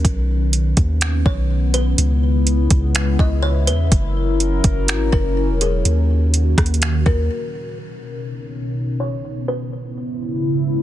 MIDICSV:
0, 0, Header, 1, 5, 480
1, 0, Start_track
1, 0, Tempo, 483871
1, 46, Time_signature, 4, 2, 24, 8
1, 10737, End_track
2, 0, Start_track
2, 0, Title_t, "Kalimba"
2, 0, Program_c, 0, 108
2, 1247, Note_on_c, 0, 73, 67
2, 1698, Note_off_c, 0, 73, 0
2, 1726, Note_on_c, 0, 71, 85
2, 1954, Note_off_c, 0, 71, 0
2, 3176, Note_on_c, 0, 75, 73
2, 3398, Note_on_c, 0, 73, 89
2, 3399, Note_off_c, 0, 75, 0
2, 3630, Note_off_c, 0, 73, 0
2, 3644, Note_on_c, 0, 71, 84
2, 3873, Note_off_c, 0, 71, 0
2, 5084, Note_on_c, 0, 70, 90
2, 5536, Note_off_c, 0, 70, 0
2, 5569, Note_on_c, 0, 68, 80
2, 5796, Note_off_c, 0, 68, 0
2, 7003, Note_on_c, 0, 70, 80
2, 7232, Note_off_c, 0, 70, 0
2, 8928, Note_on_c, 0, 73, 62
2, 9378, Note_off_c, 0, 73, 0
2, 9407, Note_on_c, 0, 71, 78
2, 9634, Note_off_c, 0, 71, 0
2, 10737, End_track
3, 0, Start_track
3, 0, Title_t, "Analog synth pad"
3, 0, Program_c, 1, 89
3, 0, Note_on_c, 1, 51, 83
3, 0, Note_on_c, 1, 61, 77
3, 45, Note_on_c, 1, 59, 80
3, 1926, Note_off_c, 1, 61, 0
3, 1927, Note_off_c, 1, 51, 0
3, 1963, Note_on_c, 1, 49, 84
3, 1963, Note_on_c, 1, 64, 96
3, 1964, Note_on_c, 1, 56, 79
3, 3847, Note_off_c, 1, 59, 0
3, 3865, Note_off_c, 1, 49, 0
3, 3866, Note_off_c, 1, 56, 0
3, 3885, Note_on_c, 1, 54, 84
3, 3885, Note_on_c, 1, 70, 97
3, 3886, Note_on_c, 1, 61, 74
3, 5766, Note_off_c, 1, 64, 0
3, 5786, Note_off_c, 1, 54, 0
3, 5786, Note_off_c, 1, 70, 0
3, 5805, Note_on_c, 1, 51, 85
3, 5805, Note_on_c, 1, 58, 75
3, 5805, Note_on_c, 1, 66, 94
3, 7687, Note_off_c, 1, 61, 0
3, 7706, Note_off_c, 1, 51, 0
3, 7706, Note_off_c, 1, 58, 0
3, 7706, Note_off_c, 1, 66, 0
3, 7722, Note_on_c, 1, 61, 73
3, 7723, Note_on_c, 1, 47, 77
3, 7723, Note_on_c, 1, 59, 71
3, 7723, Note_on_c, 1, 63, 87
3, 9625, Note_off_c, 1, 47, 0
3, 9625, Note_off_c, 1, 61, 0
3, 9625, Note_off_c, 1, 63, 0
3, 9643, Note_on_c, 1, 49, 85
3, 9643, Note_on_c, 1, 56, 71
3, 9644, Note_on_c, 1, 64, 86
3, 10737, Note_off_c, 1, 49, 0
3, 10737, Note_off_c, 1, 56, 0
3, 10737, Note_off_c, 1, 59, 0
3, 10737, Note_off_c, 1, 64, 0
3, 10737, End_track
4, 0, Start_track
4, 0, Title_t, "808-style bass"
4, 0, Program_c, 2, 38
4, 46, Note_on_c, 2, 35, 114
4, 737, Note_off_c, 2, 35, 0
4, 765, Note_on_c, 2, 39, 110
4, 1226, Note_off_c, 2, 39, 0
4, 1247, Note_on_c, 2, 35, 106
4, 1938, Note_off_c, 2, 35, 0
4, 1966, Note_on_c, 2, 37, 109
4, 2657, Note_off_c, 2, 37, 0
4, 2685, Note_on_c, 2, 37, 111
4, 3146, Note_off_c, 2, 37, 0
4, 3167, Note_on_c, 2, 37, 107
4, 3645, Note_on_c, 2, 40, 99
4, 3660, Note_off_c, 2, 37, 0
4, 3873, Note_off_c, 2, 40, 0
4, 3886, Note_on_c, 2, 30, 106
4, 4577, Note_off_c, 2, 30, 0
4, 4605, Note_on_c, 2, 30, 108
4, 4846, Note_on_c, 2, 32, 100
4, 4861, Note_off_c, 2, 30, 0
4, 5074, Note_off_c, 2, 32, 0
4, 5087, Note_on_c, 2, 30, 112
4, 5447, Note_on_c, 2, 28, 108
4, 5462, Note_off_c, 2, 30, 0
4, 5789, Note_off_c, 2, 28, 0
4, 5806, Note_on_c, 2, 39, 117
4, 6497, Note_off_c, 2, 39, 0
4, 6525, Note_on_c, 2, 39, 107
4, 6986, Note_off_c, 2, 39, 0
4, 7006, Note_on_c, 2, 39, 102
4, 7236, Note_off_c, 2, 39, 0
4, 10737, End_track
5, 0, Start_track
5, 0, Title_t, "Drums"
5, 46, Note_on_c, 9, 36, 112
5, 47, Note_on_c, 9, 42, 88
5, 146, Note_off_c, 9, 36, 0
5, 146, Note_off_c, 9, 42, 0
5, 526, Note_on_c, 9, 42, 66
5, 625, Note_off_c, 9, 42, 0
5, 762, Note_on_c, 9, 42, 71
5, 765, Note_on_c, 9, 36, 90
5, 862, Note_off_c, 9, 42, 0
5, 864, Note_off_c, 9, 36, 0
5, 1003, Note_on_c, 9, 42, 69
5, 1013, Note_on_c, 9, 26, 108
5, 1102, Note_off_c, 9, 42, 0
5, 1112, Note_off_c, 9, 26, 0
5, 1247, Note_on_c, 9, 36, 95
5, 1346, Note_off_c, 9, 36, 0
5, 1725, Note_on_c, 9, 42, 63
5, 1824, Note_off_c, 9, 42, 0
5, 1966, Note_on_c, 9, 42, 83
5, 2065, Note_off_c, 9, 42, 0
5, 2447, Note_on_c, 9, 42, 67
5, 2546, Note_off_c, 9, 42, 0
5, 2683, Note_on_c, 9, 42, 73
5, 2685, Note_on_c, 9, 36, 96
5, 2782, Note_off_c, 9, 42, 0
5, 2784, Note_off_c, 9, 36, 0
5, 2923, Note_on_c, 9, 42, 66
5, 2933, Note_on_c, 9, 26, 110
5, 3023, Note_off_c, 9, 42, 0
5, 3032, Note_off_c, 9, 26, 0
5, 3167, Note_on_c, 9, 36, 96
5, 3266, Note_off_c, 9, 36, 0
5, 3645, Note_on_c, 9, 42, 62
5, 3744, Note_off_c, 9, 42, 0
5, 3886, Note_on_c, 9, 36, 114
5, 3886, Note_on_c, 9, 42, 82
5, 3985, Note_off_c, 9, 36, 0
5, 3985, Note_off_c, 9, 42, 0
5, 4367, Note_on_c, 9, 42, 65
5, 4466, Note_off_c, 9, 42, 0
5, 4603, Note_on_c, 9, 42, 72
5, 4605, Note_on_c, 9, 36, 87
5, 4702, Note_off_c, 9, 42, 0
5, 4705, Note_off_c, 9, 36, 0
5, 4844, Note_on_c, 9, 42, 72
5, 4853, Note_on_c, 9, 26, 106
5, 4943, Note_off_c, 9, 42, 0
5, 4952, Note_off_c, 9, 26, 0
5, 5087, Note_on_c, 9, 36, 92
5, 5187, Note_off_c, 9, 36, 0
5, 5565, Note_on_c, 9, 42, 63
5, 5664, Note_off_c, 9, 42, 0
5, 5806, Note_on_c, 9, 42, 84
5, 5905, Note_off_c, 9, 42, 0
5, 6287, Note_on_c, 9, 42, 64
5, 6386, Note_off_c, 9, 42, 0
5, 6525, Note_on_c, 9, 36, 92
5, 6526, Note_on_c, 9, 42, 74
5, 6529, Note_on_c, 9, 37, 97
5, 6606, Note_off_c, 9, 42, 0
5, 6606, Note_on_c, 9, 42, 57
5, 6624, Note_off_c, 9, 36, 0
5, 6628, Note_off_c, 9, 37, 0
5, 6685, Note_off_c, 9, 42, 0
5, 6685, Note_on_c, 9, 42, 44
5, 6762, Note_off_c, 9, 42, 0
5, 6762, Note_on_c, 9, 42, 70
5, 6772, Note_on_c, 9, 26, 107
5, 6862, Note_off_c, 9, 42, 0
5, 6871, Note_off_c, 9, 26, 0
5, 7006, Note_on_c, 9, 36, 92
5, 7105, Note_off_c, 9, 36, 0
5, 10737, End_track
0, 0, End_of_file